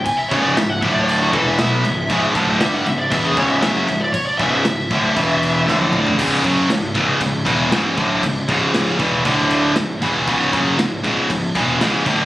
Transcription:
0.05 G#5, kick, crash
0.17 E5
0.29 C#1 C#2 G#2 C#3 C#5, kick, crash
0.42 D5
0.56 C#1 C#2 G#2 E5, snare, crash
0.69 F#5
0.82 D1 D2 A2 D3 E5, kick, crash
0.92 D5
1.01 C#5
1.08 D5, crash
1.21 F#4
1.33 E1 E2 B2 E3 A4, kick, crash
1.47 E5
1.58 B1 B2 F#3 B3, snare, crash
1.84 C#1 C#2 G#2, crash
2.09 C#1 C#2 G#2 C#3, kick, crash
2.34 D1 D2 A2 D3, kick, crash
2.59 G1 G2 D3 G3 E5, snare, crash
2.74 F#5
2.85 C#1 C#2 G#2 E5, crash
2.99 D5
3.10 E1 E2 B2 E3 E5, kick, crash
3.25 G#4
3.36 C#1 C#2 G#2 C#3 C#5, kick, crash
3.49 E5
3.61 F#1 F#2 C#3 F#3 E5, snare, crash
3.88 C#1 C#2 G#2, crash
4.01 D5
4.13 C#5, kick, crash
4.26 D5
4.38 C#1 C#2 G#2 C#3 E5, kick, crash
4.52 E5
4.65 C#1 C#2 G#2, snare, crash
4.91 D1 D2 A2 D3, kick, crash
5.16 E1 E2 B2 E3, kick, crash
5.43 crash
5.67 D1 D2 A2 D3, snare
5.81 high tom
5.93 mid tom
6.07 floor tom
6.18 C#1 C#2 G#2 C#3, kick, crash
6.44 F#1 F#2 C#3 F#3, kick, crash
6.69 C#1 C#2 G#2, snare, crash
6.95 C#1 C#2 G#2 C#3, kick, crash
7.21 C#1 C#2 G#2, kick, crash
7.45 E1 E2 B2 E3, kick, crash
7.72 C#1 C#2 G#2 C#3, snare, crash
7.97 D1 D2 A2 D3, kick, crash
8.22 C#1 C#2 G#2, kick, crash
8.48 C#1 C#2 G#2 C#3, kick, crash
8.74 snare, crash
8.99 E1 E2 B2 E3, kick, crash
9.24 D1 D2 A2 D3, kick, crash
9.50 crash
9.76 C#1 C#2 G#2, snare, crash
10.02 E1 E2 B2 E3, kick, crash
10.27 C#1 C#2 G#2 C#3, kick, crash
10.53 F#1 F#2 C#3 F#3, kick, crash
10.78 C#1 C#2 G#2, snare, crash
11.03 C#1 C#2 G#2 C#3, kick, crash
11.29 C#1 C#2 G#2, kick, crash
11.55 E1 E2 B2 E3, kick, crash
11.81 C#1 C#2 G#2 C#3, snare, crash
12.06 D1 D2 A2 D3, kick, crash

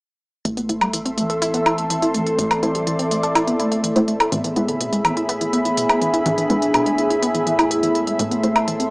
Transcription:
0.45 A1 A2 A3 C4 A4 E5 C6, closed hi-hat
0.57 B3 E4, closed hi-hat
0.69 A3 E4 C5, closed hi-hat
0.81 G3, closed hi-hat, low woodblock
0.93 E3, closed hi-hat
1.06 C4, closed hi-hat
1.18 E3 A3, closed hi-hat
1.30 A4, closed hi-hat
1.42 E4 A4, closed hi-hat
1.54 B3, closed hi-hat
1.66 E4, closed hi-hat, low woodblock
1.78 A3, closed hi-hat
1.85 E5
1.90 E3, closed hi-hat
2.02 E4, closed hi-hat
2.14 E3 A3, closed hi-hat
2.26 A4, closed hi-hat
2.39 A1 A3 D5, closed hi-hat
2.51 B3, closed hi-hat, low woodblock
2.63 A3 E4 C5, closed hi-hat
2.75 G3, closed hi-hat
2.87 E3, closed hi-hat
2.99 C4, closed hi-hat
3.11 A3, closed hi-hat
3.23 A4, closed hi-hat
3.35 E4, closed hi-hat, low woodblock
3.47 B3, closed hi-hat
3.60 A3 E4, closed hi-hat
3.72 A3, closed hi-hat
3.84 E3, closed hi-hat
3.96 A3 E4 C5, closed hi-hat
4.08 A3, closed hi-hat
4.20 A4, closed hi-hat, low woodblock
4.32 A1 E3 B3 G#4 E5 B5, closed hi-hat
4.44 E3, closed hi-hat
4.56 G#3 B3 E4 B4, closed hi-hat
4.68 D3, closed hi-hat
4.80 B2, closed hi-hat
4.93 G#3 G#4, closed hi-hat
5.05 E3 B3, closed hi-hat, low woodblock
5.17 E4, closed hi-hat
5.29 B3, closed hi-hat
5.41 E3, closed hi-hat
5.53 B3, closed hi-hat
5.65 E3, closed hi-hat
5.77 B2, closed hi-hat
5.89 B3, closed hi-hat, low woodblock
6.02 E3 D4, closed hi-hat
6.14 E4, closed hi-hat
6.26 A1 E3, closed hi-hat
6.38 E3, closed hi-hat
6.50 G#3 B3 E4 B4, closed hi-hat
6.62 D3, closed hi-hat
6.74 B2, closed hi-hat, low woodblock
6.86 G#3, closed hi-hat
6.98 E3, closed hi-hat
7.10 E4, closed hi-hat
7.22 B3, closed hi-hat
7.35 E3, closed hi-hat
7.47 E3 E4, closed hi-hat
7.59 E4, closed hi-hat, low woodblock
7.71 G#4, closed hi-hat
7.83 E3, closed hi-hat
7.95 G#3, closed hi-hat
8.07 G#3, closed hi-hat
8.19 A1 A3 A4 C6, closed hi-hat
8.31 B3, closed hi-hat
8.43 A3 E4 C5, closed hi-hat
8.56 B3, closed hi-hat, low woodblock
8.68 E3, closed hi-hat
8.80 C4, closed hi-hat

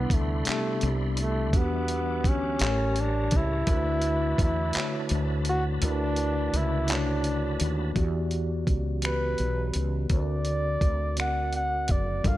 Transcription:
Already playing: C3 G3 B3 D4 E4 D5 B5 C6
0.10 D2, kick, closed hi-hat
0.14 A3
0.45 C3 G3 A3 B3 D4, muted fretless electric bass stroke, clap, closed hi-hat
0.49 G4
0.81 C2, closed hi-hat
1.17 closed hi-hat
1.21 A3
1.52 E2 E3 G3 B3 D4 F#4 E5 F#5 D6, kick, closed hi-hat
1.56 B3 G4
1.88 closed hi-hat
2.24 D2 C#4, kick, closed hi-hat
2.59 A1 A2 A3 G4 C#5 A5 A#5, clap, closed hi-hat
2.63 A4
2.70 A#4
2.96 closed hi-hat
3.00 D4
3.31 C#2, kick, closed hi-hat
3.36 E4
3.66 D2 D3 A3 D4 E4 F#4 A5 B5, kick, closed hi-hat
3.71 A#4
3.77 B4
4.02 closed hi-hat
4.38 E2, kick, closed hi-hat
4.43 E4
4.73 D3 A3 E4 F#4, muted fretless electric bass stroke, clap, closed hi-hat
4.78 C#5
5.09 D2, closed hi-hat
5.45 closed hi-hat
5.49 F#4
5.80 D2 D3 A3 E4 F#4, closed hi-hat
5.84 D4 A#4
5.91 B4
6.16 closed hi-hat
6.53 C#2 E4, closed hi-hat
6.87 A3 D4 E4 F#4, clap, closed hi-hat
6.91 D4 C#5
7.24 closed hi-hat
7.60 D#2, closed hi-hat
7.94 E2 E3 B3 F#4 G4 D5, kick, closed hi-hat
8.31 closed hi-hat
8.67 C#2, kick, closed hi-hat
9.02 E3 B3 F#4 G4 B4, finger snap, closed hi-hat
9.38 B1, closed hi-hat
9.74 C#2, closed hi-hat
10.08 D2 D3 C4 F#4 A#4, kick, closed hi-hat
10.13 C5 D5
10.19 D5
10.45 closed hi-hat
10.81 D2, kick, closed hi-hat
11.16 D3 C4 F#4 A#4 D5 F#5, finger snap, closed hi-hat
11.53 F#5, closed hi-hat
11.88 F#1 D5, kick, closed hi-hat
12.23 G1 G3 D4 F4 A4 F5, kick, closed hi-hat
12.28 A#4

